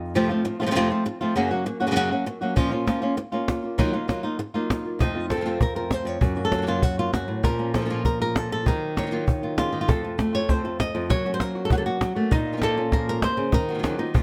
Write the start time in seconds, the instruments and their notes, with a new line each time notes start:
Already playing: nylon-string guitar F2 D#4 F4
0.14 nylon-string guitar F2 C3 F3 A3 C4 F4
0.29 nylon-string guitar F3 A3 C4 F4
0.45 nylon-string guitar F3 A3 C4 F4, muted nylon-string guitar stroke
0.59 nylon-string guitar C3 F3 A3 C4 F4
0.66 nylon-string guitar C3 F3 A3 C4 F4
0.71 nylon-string guitar C3 F3 A3 C4 F4
0.75 nylon-string guitar F2 C3 F3 A3 C4 F4, muted nylon-string guitar stroke
0.90 nylon-string guitar F3 A3 C4 F4
1.05 nylon-string guitar F3 A3 C4 F4, muted nylon-string guitar stroke
1.20 nylon-string guitar F3 A3 C4 F4
1.35 nylon-string guitar F#2 C#3 F#3 A#3 C#4 F#4
1.51 nylon-string guitar F#3 A#3 C#4 F#4
1.65 nylon-string guitar F#3 A#3 C#4 F#4, muted nylon-string guitar stroke
1.80 nylon-string guitar F#3 A#3 C#4 F#4
1.87 nylon-string guitar C#3 F#3 A#3 C#4 F#4
1.91 nylon-string guitar C#3 F#3 A#3 C#4 F#4
1.95 nylon-string guitar F#2 C#3 F#3 A#3 C#4 F#4, muted nylon-string guitar stroke
2.11 nylon-string guitar F#3 A#3 C#4 F#4
2.26 nylon-string guitar F#3 A#3 C#4 F#4, muted nylon-string guitar stroke
2.41 nylon-string guitar F#3 A#3 C#4 F#4
2.55 nylon-string guitar A#2 F3 A#3 C#4 F4, cajon bass
2.71 nylon-string guitar A#3 C#4 F4, cajon slap
2.86 nylon-string guitar F3 A#3 C#4 F4, cajon slap
3.02 nylon-string guitar A#3 C#4 F4
3.17 muted nylon-string guitar stroke, cajon slap
3.32 nylon-string guitar A#3 C#4 F4
3.48 nylon-string guitar A#3 C#4 F4, cajon slap
3.63 nylon-string guitar A#3 C#4 F4, cajon slap
3.78 nylon-string guitar D#3 F#3 A#3 D#4 F4, cajon bass
3.93 nylon-string guitar A#3 D#4 F4
4.08 nylon-string guitar D#3 F#3 A#3 D#4 F4, cajon slap
4.23 nylon-string guitar A#3 D#4 F4
4.39 muted nylon-string guitar stroke
4.54 nylon-string guitar F#3 A#3 D#4 F4
4.69 nylon-string guitar F#3 A#3 F4, cajon slap
4.85 nylon-string guitar F#3 A#3 F4
4.99 nylon-string guitar F2 C3 F3 A3 C4 D#4 F4, cajon bass
5.15 nylon-string guitar F3 A3 C4 F4
5.30 nylon-string guitar C3 F3 A3 C4 F4 A4, cajon slap
5.36 nylon-string guitar C3 F3 A3 C4 F4
5.41 nylon-string guitar C3 F3 A3 C4 F4
5.46 nylon-string guitar F2 C3 F3 A3 C4 F4, cajon slap
5.60 nylon-string guitar A#4, muted nylon-string guitar stroke, cajon bass
5.75 nylon-string guitar F3 A3 C4 F4 A#4
5.91 nylon-string guitar F3 A3 C4 F4 C5, cajon slap
6.05 nylon-string guitar F2 C#5
6.21 nylon-string guitar F#2 C#3 F#3 A#3 C#4 F#4, cajon bass
6.36 nylon-string guitar F#3 A#3 C#4 F#4
6.45 nylon-string guitar A4
6.51 nylon-string guitar C#3 F#3 A#3 C#4 F#4, cajon slap
6.57 nylon-string guitar C#3 F#3 A#3 C#4 F#4
6.62 nylon-string guitar C#3 F#3 A#3 C#4 F#4
6.66 nylon-string guitar F#2 C#3 F#3 A#3 C#4 F4 F#4, cajon slap
6.82 nylon-string guitar F#4, muted nylon-string guitar stroke, cajon bass
6.97 nylon-string guitar F#3 A#3 C#4 F4 F#4
7.12 nylon-string guitar F#2 F#3 A#3 C#4 F#4, cajon slap
7.28 nylon-string guitar A2
7.43 nylon-string guitar A#2 F3 A#3 C#4 F4 A#4, cajon bass
7.59 nylon-string guitar A#3 C#4, cajon slap
7.74 nylon-string guitar F3 A#3 C#4 F4 A4, cajon slap
7.81 nylon-string guitar F3 A#3 C#4 F4
7.85 nylon-string guitar F3 A#3 C#4 F4
7.90 nylon-string guitar A#2 F3 A#3 C#4 F4, cajon slap
8.05 nylon-string guitar A#4, muted nylon-string guitar stroke, cajon bass
8.20 nylon-string guitar A#3 C#4 F4 A#4
8.35 nylon-string guitar F3 A#3 C#4 F4 A4, cajon slap
8.52 nylon-string guitar A4
8.65 nylon-string guitar D#3 F#3 A#3 F4 A#4, cajon bass
8.96 nylon-string guitar D#3 F#3 A#3 D#4 F4 C#5, cajon slap
9.02 nylon-string guitar D#3 F#3 A#3 F4
9.07 nylon-string guitar D#3 F#3 A#3 F4
9.11 nylon-string guitar D#3 F#3 A#3 F4
9.27 muted nylon-string guitar stroke, cajon bass
9.42 nylon-string guitar F#3 A#3 F4
9.57 nylon-string guitar C#3 D#3 F#3 A#3 F4, cajon slap
9.72 nylon-string guitar D#3
9.81 nylon-string guitar F4
9.88 nylon-string guitar F2 C3 F3 A3 C4 F4 A4, cajon bass
10.03 nylon-string guitar F3 A3 C4 F4, cajon slap
10.18 nylon-string guitar A3, muted nylon-string guitar stroke, cajon slap
10.33 nylon-string guitar F3 A3 C4 F4 C#5, cajon slap
10.48 nylon-string guitar F2 C3 F3 A3 C4 F4 C5, cajon bass, cajon slap
10.64 nylon-string guitar F3 A3 C4 F4 A4
10.79 nylon-string guitar D#5, muted nylon-string guitar stroke, cajon slap
10.94 nylon-string guitar F2 F3 A3 C4 F4
11.10 nylon-string guitar F#2 C#3 F#3 A#3 C#4 F#4 C#5, cajon bass
11.25 nylon-string guitar F#3 A#3 C#4 F#4
11.34 nylon-string guitar C5
11.40 nylon-string guitar A#3 A#4, muted nylon-string guitar stroke, cajon slap
11.55 nylon-string guitar F#3 A#3 C#4 F#4
11.65 nylon-string guitar A4
11.70 nylon-string guitar F#2 C#3 F#3 A#3 C#4 F#4, cajon bass
11.78 nylon-string guitar A4
11.86 nylon-string guitar F#3 A#3 C#4 F#4
12.01 nylon-string guitar F#3, muted nylon-string guitar stroke, cajon slap
12.15 nylon-string guitar F#3 A3 A#3 C#4 F#4
12.31 nylon-string guitar A#2 D#4, muted nylon-string guitar stroke, cajon bass
12.46 nylon-string guitar F4
12.52 nylon-string guitar F3 A#3 C#4 F4
12.57 nylon-string guitar F3 A#3 C#4 F4
12.61 nylon-string guitar A#2 F3 A#3 C#4 F4 A4, cajon slap
12.76 nylon-string guitar A#3 C#4 F4
12.91 nylon-string guitar A#2 F3 A#3 C#4 F4 A#4, cajon bass, cajon slap
13.09 nylon-string guitar A#4
13.22 nylon-string guitar C3 C5, muted nylon-string guitar stroke, cajon slap
13.37 nylon-string guitar C#3
13.52 nylon-string guitar D#3 A#4, muted nylon-string guitar stroke, cajon bass
13.69 nylon-string guitar D#3 F#3 A#3 F4 F#4
13.74 nylon-string guitar D#3 F#3 A#3 F4
13.79 nylon-string guitar D#3 F#3 A#3 F4
13.83 nylon-string guitar C#3 D#3 F#3 A#3 F4, cajon slap
13.98 nylon-string guitar D#3 F#3 A#3 D#4 F4
14.14 nylon-string guitar F2 C3 D#3 A3 C4 F4, cajon bass